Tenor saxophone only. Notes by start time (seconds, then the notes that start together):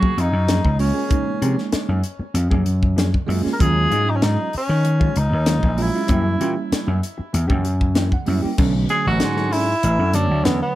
Already playing: F#4
0.20 D#4
0.80 C#4
3.53 A#4
3.61 G#4
4.10 D#4
4.16 C#4
4.23 D#4
4.57 C#4
5.19 D#4
5.81 E4
8.90 G#4
9.08 F#4
9.52 E4
10.15 D4
10.44 B3
10.62 B3